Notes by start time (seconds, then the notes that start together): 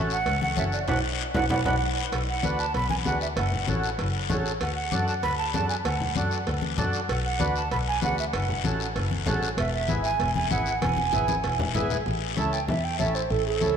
Already playing: A1 C#4 F#4 A4
0.10 F#5, short guiro
0.26 C#2, cowbell, long guiro
0.42 F#5, high conga
0.56 F#1 C#4 F#4 A4 E5, high conga, short guiro
0.72 D5, short guiro
0.88 B1 D4 F#4 B4 F#5, low conga, high timbale, long guiro
1.34 B1 D4 F#4 B4 F#5, low conga, high timbale, long guiro
1.50 B1 D4 F#4 B4 F#5, low conga, high timbale, long guiro
1.65 B1 D4 F#4 B4 F#5, low conga, high timbale, long guiro
2.12 B1 F#5, cowbell, long guiro
2.29 F#5
2.43 D2 D4 F#4 B4, high conga, short guiro
2.59 A5, short guiro
2.74 B1 B5, cowbell, long guiro
2.90 G#5, high conga
3.05 D2 D4 F#4 B4 F#5, high conga, low timbale, short guiro
3.21 E5, short guiro
3.37 F#1 F#5, cowbell, long guiro
3.52 low conga
3.68 A1 C#4 F#4 A4, high conga, short guiro
3.84 short guiro
3.99 F#1, cowbell, long guiro
4.30 A1 C#4 F#4 A4, high conga, low conga, low timbale, short guiro
4.46 short guiro
4.61 D2 F#5, cowbell, long guiro
4.75 F#5
4.91 F#2 D4 F#4 A4, high conga, short guiro
5.07 A5, short guiro
5.23 D2 B5, cowbell, long guiro
5.38 A5
5.54 F#2 D4 F#4 A4 A5, high conga, low timbale, short guiro
5.69 G#5, short guiro
5.85 D2 F#5, cowbell, long guiro
6.00 low conga
6.16 F#2 D4 F#4 A4, high conga, short guiro
6.31 short guiro
6.47 D2, cowbell, long guiro
6.62 high conga
6.78 F#2 D4 F#4 A4, high conga, low conga, short guiro
6.93 short guiro
7.09 B1 F#5, cowbell, long guiro
7.25 F#5
7.39 D2 D4 F#4 B4, high conga, short guiro
7.56 A5, short guiro
7.71 B1 B5, cowbell, long guiro
7.88 G#5
8.02 D2 D4 F#4 B4 F#5, high conga, low timbale, short guiro
8.18 E5, short guiro
8.33 F#1 F#5, cowbell, long guiro
8.49 low conga
8.64 A1 C#4 F#4 A4, high conga, short guiro
8.80 short guiro
8.96 F#1, cowbell, long guiro
9.11 high conga
9.26 A1 C#4 F#4 A4, high conga, low conga, low timbale, short guiro
9.43 short guiro
9.58 E1 E5, cowbell, long guiro
9.73 E5
9.88 G#1 B3 E4 G#4, high conga, short guiro
10.04 G#5, short guiro
10.20 E1, cowbell, long guiro
10.35 G#5, high conga
10.50 G#1 B3 E4 G#4 F#5, high conga, short guiro
10.66 short guiro
10.82 E1 G#5, cowbell, high conga, long guiro
10.97 high conga
11.13 G#1 B3 E4 G#4, high conga, short guiro
11.28 high conga, short guiro
11.44 E1, cowbell, long guiro
11.59 low conga
11.75 G#1 B3 E4 G#4, low conga, low timbale, short guiro
11.90 low conga, short guiro
12.06 A1, high conga, long guiro
12.37 C#2 C#4 E4 A4 A5, high conga, short guiro
12.53 G5, short guiro
12.68 E2 E5, high conga, low conga, long guiro
12.84 G5
12.99 A1 C#4 E4 A4 E5, high conga, short guiro
13.15 C5, short guiro
13.30 A1 A4, high conga, long guiro
13.46 A4
13.61 C#2 C#4 E4 A4, high conga, short guiro